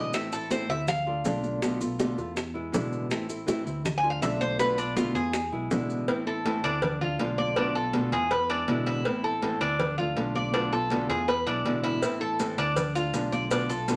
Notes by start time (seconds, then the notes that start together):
Already playing: A1 B2 D3 G#3 B3 E4 D#5
0.13 E3 A3 C4 E4 E5, high bongo, high conga, maracas
0.32 A3 C4 E4 A4, high bongo, high conga, maracas
0.51 E3 A3 C4 E4 C5, high bongo, high conga, maracas
0.69 D2 A3 C4 E4 E5, high bongo, high conga, maracas
0.88 F5, muted nylon-string guitar stroke, high bongo, high conga, low conga, maracas
1.06 A3 D4 F4, high bongo, high conga
1.25 B1 D3 A3 D4 F4, high bongo, low bongo, high conga, maracas
1.44 high conga, maracas
1.62 B2 D3 A3 B3 F4, high bongo, high conga, maracas
1.80 A3 B3 F4, high bongo, high conga, maracas
1.99 B2 D3 A3 B3 F4, high bongo, high conga, maracas
2.17 E2 A3 B3 F4, high bongo, high conga, maracas
2.36 muted nylon-string guitar stroke, high bongo, high conga, maracas
2.54 G#3 B3 E4, high bongo, high conga
2.72 A1 B2 D3 G#3 B3 E4, high bongo, low bongo, high conga, maracas
2.92 high conga, maracas
3.10 E3 A3 C4 E4, high bongo, maracas
3.28 A3 C4 E4, high bongo, high conga, maracas
3.47 E3 A3 C4 E4, high bongo, high conga, maracas
3.65 D2 A3 C4 E4, high bongo, high conga, maracas
3.84 muted nylon-string guitar stroke, high bongo, high conga, low conga, maracas
3.98 G#5
4.03 A3 D4 F4, high bongo
4.10 F5
4.21 B1 D3 A3 D4 F4 E5, high bongo, low bongo, high conga, maracas
4.41 C5, high conga, maracas
4.59 B2 D3 A3 B3 F4 B4, high bongo, high conga, maracas
4.78 A3 B3 D4 F4, high bongo, maracas
4.96 B2 D3 A3 B3 F4, high bongo, high conga, maracas
5.15 E2 A3 B3 F4 G#4, high bongo, high conga, maracas
5.33 muted nylon-string guitar stroke, high bongo, maracas
5.52 B1 G#3 B3 E4, high bongo, high conga
5.70 A1 B2 D3 G#3 B3 E4, high bongo, low bongo, high conga, maracas
5.90 high conga, maracas
6.08 E3 A3 C4 E4, cowbell, high conga
6.27 A3 C4 E4 A4
6.45 E3 A3 C4 E4, cowbell, high conga
6.63 D2 A3 C4 D4 E4, cowbell, high conga
6.82 muted nylon-string guitar stroke, cowbell, high conga, low conga
7.01 A3 D4 F4, high conga, low conga
7.19 B1 D3 A3 D4 F4, cowbell, high conga
7.38 D5, high conga
7.56 B2 D3 A3 B3 D4 F4, cowbell
7.75 A3 B3 F4 A4, high conga
7.93 B2 D3 A3 B3 F4, cowbell, high conga
8.12 E2 A3 B3 F4 G#4, cowbell, high conga
8.31 B4, muted nylon-string guitar stroke, cowbell
8.49 G#3 B3 D4 E4, cowbell, high conga
8.67 A1 B2 D3 G#3 B3 E4, cowbell, high conga
8.86 E4, cowbell, high conga
9.05 E3 A3 C4 E4, cowbell
9.23 A3 C4 E4 A4, high conga
9.42 E3 A3 C4 E4, cowbell, high conga
9.60 D2 A3 C4 D4 E4, cowbell, high conga
9.79 muted nylon-string guitar stroke, cowbell, high conga, low conga
9.98 A3 D4 F4, high conga, low conga
10.16 B1 D3 A3 D4 F4, cowbell, high conga
10.35 D5, high conga
10.54 B2 D3 A3 B3 D4 F4, cowbell, high conga
10.72 A3 B3 F4 A4, high conga
10.90 B2 D3 A3 B3 F4, cowbell, high conga
11.09 E2 A3 B3 F4 G#4, cowbell, high conga
11.28 B4, muted nylon-string guitar stroke, cowbell
11.46 B1 G#3 B3 D4 E4, cowbell, high conga
11.65 A1 B2 D3 G#3 B3 E4, cowbell, high conga
11.84 E4, cowbell, high conga
12.02 E3 A3 C4 E4, cowbell, maracas
12.20 A3 C4 E4 A4, high conga
12.39 E3 A3 C4 E4, cowbell, high conga, maracas
12.57 D2 A3 C4 D4 E4, cowbell, high conga, maracas
12.76 muted nylon-string guitar stroke, cowbell, high conga, low conga, maracas
12.95 A3 D4 F4, high conga, maracas
13.13 B1 D3 A3 D4 F4, cowbell, high conga, maracas
13.32 D5, high conga, maracas
13.51 B2 D3 A3 B3 D4 F4, cowbell, high conga, maracas
13.69 A3 B3 F4 A4, high conga, maracas
13.88 B2 D3 A3 B3 F4, cowbell, high conga, maracas